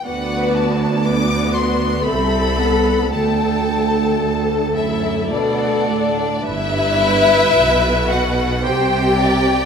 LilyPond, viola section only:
\new Staff \with { instrumentName = "Viola section" } { \time 3/4 \key g \major \tempo 4 = 55 << { fis'4 fis'4 a'4 | a'2 a'4 | b'2 c''8 d''8 | } \\ { b4 b4 c'8 b8 | a2 a4 | r2. | } >> }